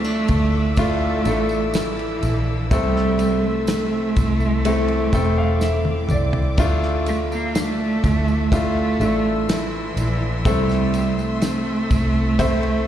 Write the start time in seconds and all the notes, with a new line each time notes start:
Already playing: D2 D3 A3 D4 E4 F4 A4 E5 D6 E6
0.04 D4
0.28 D2 E4, kick, ride, tambourine
0.77 A3 D4 E4 F4, kick, ride, tambourine
1.25 A1 A3 D4 E4 A4, ride, tambourine
1.49 tambourine
1.74 E3 E4, snare, ride, tambourine
1.99 ride
2.23 A#1 D4, ride, tambourine
2.70 C2 C3 G3 A3 C4 E4 A4 E5 C6, kick, ride, tambourine
2.96 snare
3.19 A3, ride, tambourine
3.46 A3
3.67 C4, snare, ride, tambourine
4.16 C2 E4, kick, ride, tambourine
4.40 tambourine
4.64 E3 A3 C4 E4 A4 D6, ride, tambourine
4.88 ride
5.13 E1 A3 C4 E4 A4 G5, kick, ride, tambourine
5.38 F5
5.61 E4 E5, snare, tambourine
5.85 high tom
6.09 C2 C4 D5, mid tom, tambourine
6.33 floor tom
6.57 D2 D3 A3 D4 E4 F4 E5 E6, kick, crash, tambourine
6.83 snare
7.06 A3, ride, tambourine
7.32 A#3, tambourine
7.55 A3 D4, snare, ride, tambourine
8.03 D2 E4, kick, ride, tambourine
8.28 tambourine
8.51 A3 D4 E4 F4 C6, kick, ride, tambourine
8.56 A3
9.00 A1 A3 D4 E4 A4, ride, tambourine
9.49 E3 E4, snare, ride, tambourine
9.96 A#1 D4, ride, tambourine
10.44 C2 C3 A3 C4 E4 A4 E5, kick, ride, tambourine
10.49 G3
10.69 snare, tambourine
10.94 A3, ride, tambourine
11.19 A3, tambourine
11.42 C4, snare, ride, tambourine
11.90 C2 E4, kick, ride, tambourine
12.39 E3 A3 C4 E4 C5, kick, ride, tambourine
12.63 ride